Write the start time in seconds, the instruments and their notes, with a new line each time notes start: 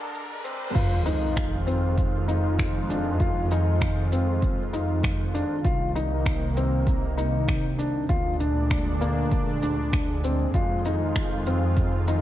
Already playing: analog synth pad D3 G#3 D4 A#4, felt piano D4, riser
0.14 shaker
0.44 felt piano C4, shaker
0.75 double bass section F2, analog synth pad D#3 G#3 F4, felt piano F4, kick, crash, sub drop, shaker
1.06 felt piano D#4, shaker
1.36 finger snap, kick, shaker
1.67 felt piano C4, shaker
1.98 kick, shaker
2.28 felt piano D#4, shaker
2.59 finger snap, kick, shaker
2.90 felt piano D4, shaker
3.20 felt piano F4, kick, shaker
3.51 felt piano D#4, shaker
3.81 finger snap, kick, shaker
4.12 felt piano C4, shaker
4.42 kick, shaker
4.73 felt piano D#4, shaker
5.03 finger snap, kick, shaker
5.34 felt piano D4, shaker
5.65 double bass section C2, analog synth pad C3 D#3 A#3, felt piano F4, kick, shaker
5.95 felt piano D#4, shaker
6.26 finger snap, kick, shaker
6.57 felt piano C4, shaker
6.87 kick, shaker
7.17 felt piano D#4, shaker
7.48 finger snap, kick, shaker
7.79 felt piano D4, shaker
8.09 double bass section D2, analog synth pad A#2 G#3 D4, felt piano F4, kick, shaker
8.40 felt piano D4, shaker
8.70 finger snap, kick, shaker
9.01 felt piano A#3, shaker
9.32 kick, shaker
9.63 felt piano D4, shaker
9.93 finger snap, kick, shaker
10.24 felt piano C4, shaker
10.54 double bass section F2, analog synth pad D#3 F4, felt piano F4, kick, shaker
10.85 felt piano D#4, shaker
11.15 finger snap, kick, shaker
11.46 felt piano C4, shaker
11.77 kick, shaker
12.08 felt piano D#4, shaker